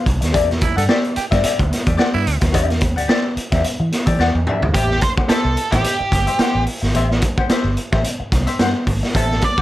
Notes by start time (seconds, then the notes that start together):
0.05 C2, muted hollow-body jazz guitar stroke, kick, closed hi-hat
0.21 D#2, muted hollow-body jazz guitar stroke, snare, closed hi-hat
0.33 E2 G4 D5 E5, kick, closed hi-hat
0.49 muted hollow-body jazz guitar stroke, snare, closed hi-hat
0.61 E4, muted hollow-body jazz guitar stroke, kick, closed hi-hat
0.76 G2 G4 A4 D5 F#5, closed hi-hat
0.89 G4 D5 E5, snare
1.04 closed hi-hat
1.16 G4, muted hollow-body jazz guitar stroke, muted fingered electric bass stroke, closed hi-hat
1.31 G2 G4 D5 E5, kick, snare, closed hi-hat
1.43 G4 D5 E5, muted fingered electric bass stroke, closed hi-hat
1.59 D2, kick, closed hi-hat
1.71 muted hollow-body jazz guitar stroke, snare, closed hi-hat
1.86 E2 G4 D5 E5, kick, closed hi-hat
1.97 G4 D5 F#5, snare
2.14 G2 E4
2.25 D2, muted hollow-body jazz guitar stroke, closed hi-hat
2.41 D#2, muted hollow-body jazz guitar stroke, kick, snare, closed hi-hat
2.52 E2 G4 D5 E5, kick, closed hi-hat
2.69 muted hollow-body jazz guitar stroke, snare, closed hi-hat
2.81 muted hollow-body jazz guitar stroke, kick, closed hi-hat
2.96 D2 G4 D5 F#5, closed hi-hat
3.08 G4 D5 E5, snare
3.37 muted hollow-body jazz guitar stroke, muted fingered electric bass stroke, closed hi-hat
3.52 E2 G4 D5 E5, kick, snare, closed hi-hat
3.64 muted hollow-body jazz guitar stroke, closed hi-hat
3.80 E3, muted hollow-body jazz guitar stroke
3.92 snare, closed hi-hat
4.06 E3 G4 D5 E5, kick, closed hi-hat
4.19 E2 G4 D5 F#5, snare
4.35 E2, muted hollow-body jazz guitar stroke, high tom
4.47 G4 D5 E5, mid tom
4.62 D2, muted hollow-body jazz guitar stroke, floor tom
4.74 A1 G4 C5 E5, kick, closed hi-hat
4.89 muted hollow-body jazz guitar stroke, snare
5.01 C5, muted hollow-body jazz guitar stroke, kick, closed hi-hat
5.17 G4 C5 F#5, muted fingered electric bass stroke, kick
5.29 G4 A4 C5 E5, muted fingered electric bass stroke, snare, closed hi-hat
5.45 C2
5.57 muted hollow-body jazz guitar stroke, closed hi-hat
5.72 A1 G4 C5 E5, kick, snare, closed hi-hat
5.84 muted hollow-body jazz guitar stroke, closed hi-hat
5.99 muted hollow-body jazz guitar stroke, muted fingered electric bass stroke
6.12 G1, kick, closed hi-hat
6.27 G4 C5 E5, closed hi-hat
6.39 G4 C5 F#5, muted fingered electric bass stroke, snare, closed hi-hat
6.55 A1
6.67 muted hollow-body jazz guitar stroke, open hi-hat
6.82 G#1, muted hollow-body jazz guitar stroke, snare
6.94 A1 G4 C5 E5, closed hi-hat
7.10 muted hollow-body jazz guitar stroke, snare
7.21 muted hollow-body jazz guitar stroke, kick, closed hi-hat
7.38 G4 C5 F#5, muted fingered electric bass stroke, kick
7.49 G4 C5 E5, muted fingered electric bass stroke, snare, closed hi-hat
7.64 G1
7.77 muted hollow-body jazz guitar stroke, closed hi-hat
7.92 A1 G4 C5 E5, kick, snare
8.04 muted hollow-body jazz guitar stroke, closed hi-hat
8.20 muted hollow-body jazz guitar stroke, muted fingered electric bass stroke
8.32 C2, kick, snare, closed hi-hat
8.47 G4 C5 E5, closed hi-hat
8.59 G2 G4 C5 F#5, snare, closed hi-hat
8.87 G#1, muted hollow-body jazz guitar stroke, kick, open hi-hat
9.03 muted hollow-body jazz guitar stroke, snare
9.14 A1 G4 A4 C5 E5, kick, closed hi-hat
9.30 muted hollow-body jazz guitar stroke, snare
9.41 D5, muted hollow-body jazz guitar stroke, kick, closed hi-hat
9.58 F#5, muted fingered electric bass stroke, kick